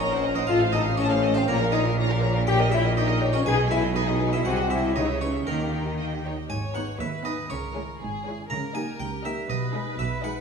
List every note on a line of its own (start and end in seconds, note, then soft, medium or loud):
0.00 0.45 A#1 medium
0.00 0.45 A#2 medium
0.00 0.51 A#2 medium
0.00 0.51 A#3 medium
0.00 0.60 C4 medium
0.00 0.37 C#4 loud
0.00 0.11 A#4 medium
0.00 0.51 A#4 medium
0.00 0.33 C#5 medium
0.00 0.35 D#5 medium
0.00 0.11 F#5 medium
0.00 0.11 A#5 medium
0.00 0.98 D#6 medium
0.10 0.23 A#4 medium
0.10 0.24 C5 medium
0.10 0.51 F#5 medium
0.15 0.25 F#5 medium
0.23 0.37 A#4 medium
0.23 1.23 C5 medium
0.23 0.36 D#5 medium
0.23 0.36 A#5 medium
0.35 0.43 D#4 medium
0.35 0.48 A#4 medium
0.35 0.49 C5 medium
0.35 0.47 D#5 medium
0.35 0.49 F#5 medium
0.47 1.46 A1 medium
0.47 1.46 A2 medium
0.47 1.50 A2 medium
0.47 0.60 F4 loud
0.47 0.61 A4 medium
0.47 0.60 D#5 medium
0.47 0.71 F5 loud
0.47 0.60 A5 medium
0.60 1.50 C4 medium
0.60 0.74 C5 medium
0.60 0.73 F5 medium
0.60 0.74 F5 medium
0.73 0.84 D#4 loud
0.73 0.86 A4 medium
0.73 0.96 D#5 loud
0.73 0.85 D#5 medium
0.73 0.87 A5 medium
0.85 0.99 C5 medium
0.85 0.98 F5 medium
0.85 1.10 F5 medium
0.85 0.99 F5 medium
0.97 1.35 C#4 loud
0.97 1.10 A4 medium
0.97 1.33 C#5 medium
0.97 1.09 D#5 medium
0.97 1.11 A5 medium
0.97 1.51 D#6 medium
1.10 1.23 C5 medium
1.10 1.23 F5 medium
1.10 1.85 F5 medium
1.10 1.24 F5 medium
1.23 1.36 A4 medium
1.23 1.51 C5 medium
1.23 1.36 D#5 medium
1.23 1.36 A5 medium
1.34 1.42 C4 loud
1.34 1.47 C5 medium
1.34 1.48 C5 medium
1.34 1.48 F5 medium
1.34 1.49 F5 medium
1.48 3.42 A#1 medium
1.48 3.42 A#1 loud
1.48 3.43 A#2 medium
1.48 2.47 A#2 medium
1.48 1.59 A#3 loud
1.48 1.60 F4 medium
1.48 1.71 A#4 loud
1.48 1.60 C#5 medium
1.48 1.61 A#5 medium
1.61 2.59 A#3 medium
1.61 1.73 A#4 medium
1.61 1.74 F5 medium
1.71 1.83 D#4 loud
1.71 1.86 F4 medium
1.71 1.85 C#5 medium
1.71 2.34 C#5 medium
1.71 1.96 D#5 medium
1.71 1.86 A#5 medium
1.86 1.98 A#4 medium
1.86 1.98 F5 medium
1.86 2.10 F5 medium
1.98 2.10 F4 medium
1.98 2.09 C#5 medium
1.98 2.10 A#5 medium
1.98 2.97 C#6 medium
2.10 2.22 A#4 medium
2.10 2.23 A#4 medium
2.10 2.23 F5 medium
2.10 2.50 F5 medium
2.22 2.35 F4 medium
2.22 3.21 A#4 medium
2.22 2.35 C#5 medium
2.22 2.35 A#5 medium
2.34 2.47 A#4 medium
2.34 2.72 C#5 medium
2.34 2.47 F5 medium
2.47 3.49 A#2 medium
2.47 2.59 G4 medium
2.47 2.59 G4 loud
2.47 2.59 C#5 medium
2.47 2.70 G5 loud
2.47 2.59 G5 medium
2.59 2.72 A#4 medium
2.59 2.72 D#5 medium
2.71 2.84 E4 loud
2.71 2.84 G4 medium
2.71 2.84 C#5 medium
2.71 3.33 C#5 medium
2.71 2.95 E5 loud
2.71 2.84 G5 medium
2.84 2.97 A#4 medium
2.84 2.96 D#5 medium
2.84 2.97 D#5 medium
2.96 3.33 D#4 medium
2.96 3.08 G4 medium
2.96 3.08 C#5 medium
2.96 3.31 D#5 medium
2.96 3.08 G5 medium
2.96 3.49 C#6 medium
3.08 3.21 A#4 medium
3.08 3.21 D#5 medium
3.19 3.33 G4 medium
3.19 3.48 A#4 medium
3.19 3.33 C#5 medium
3.19 3.33 G5 medium
3.33 3.40 C#4 loud
3.33 3.46 A#4 medium
3.33 3.45 C#5 medium
3.33 3.48 C#5 medium
3.33 3.46 D#5 medium
3.44 4.47 B1 medium
3.44 4.43 B1 medium
3.44 4.43 B2 medium
3.44 4.47 B2 medium
3.44 3.57 D#4 medium
3.44 3.58 G#4 loud
3.44 3.57 B4 medium
3.44 3.56 G#5 medium
3.44 3.69 G#5 loud
3.56 4.57 G#3 medium
3.56 3.70 G#4 medium
3.56 3.70 D#5 medium
3.68 3.82 D#4 medium
3.68 3.82 E4 loud
3.68 3.83 B4 medium
3.68 4.32 B4 medium
3.68 3.94 E5 loud
3.68 3.82 G#5 medium
3.81 3.95 G#4 medium
3.81 3.96 G#4 medium
3.81 3.95 D#5 medium
3.81 4.06 D#5 medium
3.94 4.06 D#4 medium
3.94 4.32 D#4 medium
3.94 4.07 B4 medium
3.94 4.30 D#5 medium
3.94 4.06 G#5 medium
3.94 4.47 B5 medium
4.06 4.20 G#4 medium
4.06 4.21 G#4 medium
4.06 4.20 D#5 medium
4.06 4.82 D#5 medium
4.18 4.33 D#4 medium
4.18 4.70 G#4 medium
4.18 4.32 B4 medium
4.18 4.32 G#5 medium
4.31 4.45 G#4 medium
4.31 4.43 G#4 medium
4.31 4.48 B4 medium
4.31 4.44 D#5 medium
4.31 4.44 E5 medium
4.35 4.40 E4 medium
4.44 4.96 C2 medium
4.44 4.97 C2 medium
4.44 4.98 C3 medium
4.44 4.96 C3 medium
4.44 4.57 F#4 medium
4.44 4.70 F#4 loud
4.44 4.56 G#4 medium
4.44 4.56 C5 medium
4.44 4.68 F#5 medium
4.56 5.49 G#3 medium
4.56 4.70 F#4 medium
4.56 4.70 G#4 medium
4.56 4.70 D#5 medium
4.69 4.95 E4 loud
4.69 4.82 F#4 medium
4.69 4.83 G#4 medium
4.69 4.82 C5 medium
4.69 4.94 E5 medium
4.81 4.95 F#4 medium
4.81 4.96 G#4 medium
4.81 4.95 D#5 medium
4.81 4.98 D#5 medium
4.94 5.47 C#2 medium
4.94 5.32 C#2 medium
4.94 5.49 C#3 medium
4.94 5.47 C#3 medium
4.94 5.07 D#4 medium
4.94 5.07 E4 medium
4.94 5.07 B4 medium
4.94 5.07 C#5 medium
4.94 5.19 D#5 medium
5.07 5.49 B3 soft
5.07 5.21 G#4 medium
5.07 5.21 C#5 medium
5.07 5.21 E5 medium
5.18 5.46 C#4 medium
5.18 5.34 E4 soft
5.18 5.49 G#4 soft
5.18 5.33 B4 soft
5.18 5.33 C#5 medium
5.18 5.45 C#5 medium
5.33 5.47 G#4 soft
5.33 5.46 C#5 soft
5.33 5.46 E5 medium
5.33 5.49 E5 soft
5.45 6.27 D#2 medium
5.45 6.28 D#2 medium
5.45 6.27 D#3 medium
5.45 6.52 D#3 medium
5.45 6.24 A#3 medium
5.45 5.58 D#4 medium
5.45 5.58 A#4 medium
5.45 6.20 A#4 medium
5.45 5.58 G5 medium
5.58 6.74 D#4 soft
5.58 5.72 G4 soft
5.58 5.73 G4 medium
5.58 5.72 D#5 soft
5.72 5.86 D#4 soft
5.72 5.86 A#4 soft
5.72 6.36 A#4 soft
5.72 5.85 G5 soft
5.85 5.98 G4 soft
5.85 5.98 D#5 soft
5.85 6.10 G5 soft
5.98 6.11 D#4 soft
5.98 6.06 D#5 medium
5.98 6.10 G5 medium
5.98 6.52 A#5 medium
6.10 6.24 G4 soft
6.10 6.24 D#5 soft
6.10 6.51 G5 soft
6.23 6.37 D#4 soft
6.23 6.32 C#5 medium
6.23 7.52 D#5 soft
6.23 6.36 G5 soft
6.36 6.49 G4 soft
6.36 6.52 A#4 soft
6.36 6.49 D#5 soft
6.50 6.90 G#1 medium
6.50 6.89 G#2 medium
6.50 7.52 G#2 medium
6.50 6.97 C#5 medium
6.50 6.73 G#5 medium
6.62 7.52 B3 soft
6.74 6.94 B3 medium
6.74 7.24 D#4 soft
6.74 6.94 D#4 medium
6.74 6.93 G#4 medium
6.74 6.93 B4 medium
6.74 6.98 F#5 medium
6.87 7.12 G#4 soft
7.00 7.39 D#2 medium
7.00 7.40 D#2 medium
7.00 7.52 B4 soft
7.00 7.50 B4 medium
7.00 7.23 E5 medium
7.13 7.87 G#4 soft
7.25 7.44 B3 medium
7.25 7.52 D#4 soft
7.25 7.44 D#4 medium
7.25 7.43 G#4 medium
7.25 7.43 B4 medium
7.25 7.48 D#5 medium
7.38 7.52 D#3 soft
7.50 7.89 C#2 medium
7.50 8.49 C#3 medium
7.50 7.89 C#3 medium
7.50 7.99 A#4 medium
7.50 8.20 C#5 medium
7.63 8.52 G#3 soft
7.75 7.94 G#3 medium
7.75 8.00 E4 soft
7.75 7.94 E4 medium
7.75 7.93 G#4 medium
7.75 7.93 C#5 medium
7.88 8.12 G#4 soft
8.00 8.39 G#1 medium
8.00 8.39 G#2 medium
8.00 8.24 E4 soft
8.00 8.48 G#4 medium
8.13 8.52 G#4 soft
8.25 8.44 G#3 medium
8.25 8.52 E4 soft
8.25 8.44 E4 soft
8.25 8.43 G#4 medium
8.25 8.43 C#5 medium
8.38 9.51 C#4 soft
8.49 8.89 C#2 medium
8.49 9.51 C#3 medium
8.49 8.89 C#3 medium
8.49 9.46 A#4 medium
8.49 8.73 A#5 medium
8.63 9.51 A#3 soft
8.74 8.93 A#3 medium
8.74 8.93 D#4 medium
8.74 9.23 D#4 soft
8.74 8.93 G4 medium
8.74 8.93 D#5 medium
8.74 8.98 G#5 medium
8.88 9.11 G4 soft
8.99 9.38 C#2 medium
8.99 9.39 C#3 medium
8.99 9.51 A#4 medium
8.99 9.22 G5 medium
9.13 9.51 G4 soft
9.24 9.42 A#3 medium
9.24 9.73 D#4 soft
9.24 9.43 D#4 medium
9.24 9.42 G4 medium
9.24 9.42 D#5 medium
9.24 9.48 E5 medium
9.37 9.51 G3 soft
9.48 9.88 B1 medium
9.48 9.88 B2 medium
9.48 10.41 B2 medium
9.48 10.41 B4 medium
9.48 9.95 D#5 medium
9.62 10.41 B3 medium
9.74 9.92 G#3 medium
9.74 10.21 D#4 medium
9.74 9.92 D#4 medium
9.74 9.92 G#4 medium
9.74 9.92 D#5 medium
9.87 10.09 G#4 soft
9.98 10.37 B1 medium
9.98 10.37 B2 medium
9.98 10.41 B4 medium
9.98 10.21 E5 medium
10.11 10.41 G#4 medium
10.23 10.41 G#3 medium
10.23 10.41 D#4 soft
10.23 10.41 D#4 medium
10.23 10.41 G#4 medium
10.23 10.41 D#5 medium
10.23 10.41 F#5 medium
10.35 10.41 G#3 soft